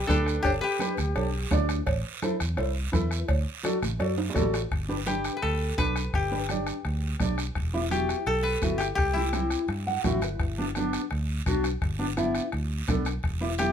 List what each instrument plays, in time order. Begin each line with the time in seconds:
Already playing: koto G4 B4
0.07 fingered electric bass D2, clarinet D4, nylon-string guitar D4 G4 B4, koto D4 A4, bombo low, bombo rim, high conga, low timbale, short guiro
0.26 bombo rim, short guiro
0.43 fingered electric bass G1, clarinet D4, koto D4 G4, bombo low, bombo rim, cowbell, high conga, long guiro
0.60 clarinet G4, koto G4 B4
0.79 nylon-string guitar D4 G4 B4, bombo rim, high conga, short guiro
0.97 fingered electric bass D2, bombo rim, low conga, short guiro
1.15 fingered electric bass B1, nylon-string guitar D4 G4 A4, bombo rim, cowbell, high conga, long guiro
1.51 fingered electric bass D2, nylon-string guitar D4 G4 D5, bombo low, bombo rim, high conga, low conga, low timbale, short guiro
1.69 bombo rim, short guiro
1.87 fingered electric bass A1, bombo low, bombo rim, cowbell, high conga, long guiro
2.22 nylon-string guitar E4 A4 C5, bombo rim, high conga, short guiro
2.40 fingered electric bass E2, bombo rim, short guiro
2.57 fingered electric bass C2, nylon-string guitar E4 A4 C5, bombo rim, cowbell, high conga, long guiro
2.92 fingered electric bass E2, nylon-string guitar E4 A4 B4, bombo low, bombo rim, high conga, short guiro
3.11 bombo rim, short guiro
3.28 fingered electric bass D2, bombo low, bombo rim, cowbell, high conga, long guiro
3.63 nylon-string guitar F#4 A4 D5, bombo rim, high conga, short guiro
3.82 fingered electric bass A1, bombo rim, low conga, short guiro
3.99 fingered electric bass F#2, nylon-string guitar F#4 A4 D5, bombo rim, cowbell, high conga, long guiro
4.18 high timbale
4.30 low timbale
4.34 fingered electric bass A1, nylon-string guitar F#4 A4 D5, bombo low, bombo rim, high conga, low conga, short guiro
4.42 low timbale
4.54 bombo rim, low timbale, short guiro
4.71 fingered electric bass G1, bombo low, bombo rim, high conga, long guiro
4.88 nylon-string guitar D4 G4 B4
5.06 nylon-string guitar D4 G4 B4, koto G4, bombo rim, high conga, short guiro
5.24 bombo rim, short guiro
5.37 koto B4
5.42 fingered electric bass D2, koto A4, bombo rim, high conga, long guiro
5.78 fingered electric bass B1, nylon-string guitar D4 G4 B4, koto B4, bombo low, bombo rim, high conga, short guiro
5.96 bombo rim, short guiro
6.14 fingered electric bass G1, koto G4, bombo low, bombo rim, high conga, long guiro
6.31 nylon-string guitar D4 G4 B4
6.49 nylon-string guitar D4 G4 D5, bombo rim, high conga, short guiro
6.67 bombo rim, short guiro
6.85 fingered electric bass D2, bombo rim, high conga, long guiro
7.20 fingered electric bass B1, nylon-string guitar D4 G4 D5, bombo low, bombo rim, high conga, low conga, short guiro
7.38 bombo rim, short guiro
7.55 fingered electric bass E1, bombo low, bombo rim, high conga, long guiro
7.73 nylon-string guitar B3 E4 G4
7.91 nylon-string guitar B3 E4 F#4, koto G4, bombo rim, high conga, short guiro
8.09 bombo rim, short guiro
8.26 fingered electric bass B1, koto A4, bombo rim, high conga, long guiro
8.43 koto B4
8.62 fingered electric bass G1, nylon-string guitar B3 E4 F#4, bombo low, bombo rim, high conga, short guiro
8.78 koto G4, bombo rim, short guiro
8.95 fingered electric bass C2, koto G4, bombo low, bombo rim, high conga, long guiro
9.13 nylon-string guitar C4 E4 G4, koto E4
9.32 nylon-string guitar C4 E4 G4, bombo rim, high conga, short guiro
9.50 bombo rim, short guiro
9.68 fingered electric bass G2, bombo rim, high conga, long guiro
9.87 nylon-string guitar F#5
10.04 fingered electric bass A1, nylon-string guitar C4 E4 F#4 E5, bombo low, bombo rim, high conga, low conga, short guiro
10.22 fingered electric bass G1, nylon-string guitar B4, bombo rim, short guiro
10.40 fingered electric bass G1, bombo low, bombo rim, high conga, long guiro
10.58 nylon-string guitar B3 D4 G4
10.75 nylon-string guitar B3 D4 G4, bombo rim, high conga, short guiro
10.93 bombo rim, short guiro
11.11 fingered electric bass D2, bombo rim, high conga, long guiro
11.46 fingered electric bass B1, nylon-string guitar B3 D4 F#4, bombo low, bombo rim, high conga, short guiro
11.64 bombo rim, short guiro
11.82 fingered electric bass G1, bombo low, bombo rim, high conga, long guiro
11.99 nylon-string guitar B3 D4 G4
12.17 nylon-string guitar B3 D4 E4, bombo rim, high conga, short guiro
12.35 bombo rim, short guiro
12.52 fingered electric bass D2, bombo rim, high conga, long guiro
12.88 fingered electric bass B1, nylon-string guitar B3 D4 A4, bombo low, bombo rim, high conga, low conga, short guiro
13.05 bombo rim, short guiro
13.23 fingered electric bass E1, bombo low, bombo rim, high conga, long guiro
13.41 nylon-string guitar B3 E4 G4
13.58 nylon-string guitar B3 E4 G4, koto G4, bombo rim, high conga, short guiro